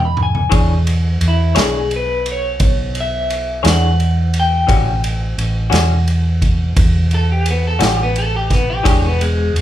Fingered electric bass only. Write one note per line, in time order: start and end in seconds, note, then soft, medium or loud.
0.00 0.47 E2 medium
0.52 1.17 E2 medium
1.21 1.53 E2 medium
1.55 2.55 B1 medium
2.60 3.60 B1 medium
3.64 4.64 E2 medium
4.68 5.34 A1 medium
5.38 5.70 A1 medium
5.72 6.72 E2 medium
6.76 7.76 E2 medium
7.79 8.80 A1 medium
8.86 9.50 E1 medium
9.53 9.61 E1 medium